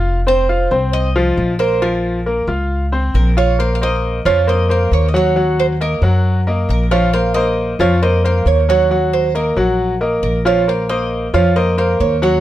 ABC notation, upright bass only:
X:1
M:4/4
L:1/8
Q:1/4=136
K:Bbm
V:1 name="Upright bass" clef=bass
F,,,3 C,,3 B,,,2- | B,,,3 D,,3 B,,,2- | B,,,3 F,,3 E,,2- | E,,3 G,,3 B,,,2- |
B,,,3 F,,3 E,,2- | E,,3 B,,,3 B,,,2- | B,,,3 F,,3 E,,2 |]